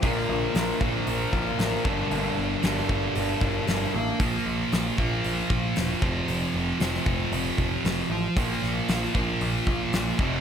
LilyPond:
<<
  \new Staff \with { instrumentName = "Clean electric guitar" } { \time 4/4 \key bes \major \tempo 4 = 115 <bes, d f bes d' bes'>8 <f bes d' bes'>8 <bes, d f bes d' bes'>8 <f bes d' bes'>8 <f bes d' bes'>8 <bes, d f bes d' bes'>8 <f bes d' bes'>8 <g, d g bes d' a'>8 | <g, d g bes d' a'>8 <g bes d' a'>8 <g, d g bes d' a'>8 <g bes d' a'>8 <g bes d' a'>8 <g, d g bes d' a'>8 <g bes d' a'>8 <g bes d' a'>8 | r1 | r1 |
r1 | }
  \new Staff \with { instrumentName = "Distorted electric guitar" } { \clef bass \time 4/4 \key bes \major <bes, f bes>4. <bes, f bes>2 <g, d g>8~ | <g, d g>4 <g, d g>2~ <g, d g>8 r8 | <bes, f bes>4. <bes, f bes>2 <f, c f>8~ | <f, c f>4 <f, c f>2~ <f, c f>8 r8 |
<bes, f bes>4. <bes, f bes>2 <f, c f>8 | }
  \new Staff \with { instrumentName = "Picked electric bass" } { \clef bass \time 4/4 \key bes \major bes,,8 bes,,8 bes,,8 bes,,8 bes,,8 bes,,8 a,,8 g,,8 | g,,8 g,,8 g,,8 g,,8 g,,8 g,,8 g,,8 a,,8 | bes,,8 bes,,8 bes,,8 bes,,8 bes,,8 bes,,8 e,,8 f,,8 | f,,8 f,,8 f,,8 f,,8 f,,8 f,,8 f,,8 a,,8 |
bes,,8 bes,,8 bes,,8 bes,,8 bes,,8 bes,,8 bes,,8 f,,8 | }
  \new DrumStaff \with { instrumentName = "Drums" } \drummode { \time 4/4 <hho bd>4 <hho sn>8 bd8 hho8 bd8 <hho sn>8 bd8 | hho4 <hho sn>16 sn16 bd8 hho8 bd8 <hho sn>4 | <hho bd>4 <hho sn>8 bd8 hho8 bd8 <hho sn>8 bd8 | hho4 <hho sn>16 sn16 bd8 hho8 bd8 <hho sn>4 |
<hho bd>8 sn8 <hho sn>8 bd8 hho8 bd8 <hho sn>8 bd8 | }
>>